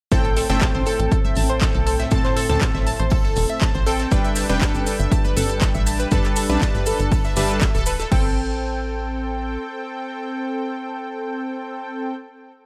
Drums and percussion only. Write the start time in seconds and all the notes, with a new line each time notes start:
0.12 kick, closed hi-hat, shaker
0.25 closed hi-hat
0.36 snare, open hi-hat, shaker
0.50 snare, closed hi-hat, high conga
0.61 kick, snare, clap, closed hi-hat, shaker
0.75 high conga
0.86 open hi-hat, shaker
1.00 closed hi-hat
1.12 kick, closed hi-hat, shaker
1.25 closed hi-hat, low conga
1.35 open hi-hat, high conga, shaker
1.50 closed hi-hat
1.61 kick, snare, clap, closed hi-hat, shaker
1.87 open hi-hat, shaker
2.00 snare, closed hi-hat
2.11 kick, closed hi-hat, shaker
2.24 snare, clap, closed hi-hat
2.37 open hi-hat, shaker
2.50 snare, closed hi-hat, high conga
2.61 kick, snare, clap, closed hi-hat, shaker
2.75 snare, low conga
2.87 open hi-hat, shaker
3.00 closed hi-hat
3.10 kick, closed hi-hat, open hi-hat
3.25 snare
3.36 open hi-hat, shaker
3.50 closed hi-hat
3.61 kick, snare, clap, closed hi-hat, shaker
3.86 open hi-hat, shaker
4.00 snare, closed hi-hat
4.11 kick, closed hi-hat, shaker, maracas
4.24 closed hi-hat, maracas
4.36 snare, open hi-hat, maracas, shaker
4.49 snare, high conga, maracas
4.61 kick, snare, clap, closed hi-hat, shaker, maracas
4.75 high conga, maracas
4.86 open hi-hat, maracas, shaker
5.00 closed hi-hat, maracas
5.12 kick, closed hi-hat, shaker, maracas
5.24 closed hi-hat, low conga, maracas
5.37 open hi-hat, high conga, shaker, maracas
5.49 closed hi-hat, maracas
5.61 kick, snare, clap, closed hi-hat, shaker, maracas
5.74 maracas
5.86 open hi-hat, maracas, shaker
6.00 snare, closed hi-hat, maracas
6.11 kick, closed hi-hat, shaker, maracas
6.24 snare, clap, closed hi-hat, maracas
6.36 open hi-hat, maracas, shaker
6.49 snare, high conga, maracas
6.61 kick, snare, clap, closed hi-hat, maracas, shaker
6.75 snare, low conga, maracas
6.86 open hi-hat, maracas, shaker
7.00 closed hi-hat, maracas
7.12 kick, closed hi-hat, open hi-hat, maracas
7.24 snare, maracas
7.36 open hi-hat, maracas, shaker
7.50 closed hi-hat, maracas
7.61 kick, snare, clap, closed hi-hat, maracas, shaker
7.75 closed hi-hat, maracas
7.86 open hi-hat, maracas, shaker
7.99 snare, closed hi-hat, maracas
8.12 kick, crash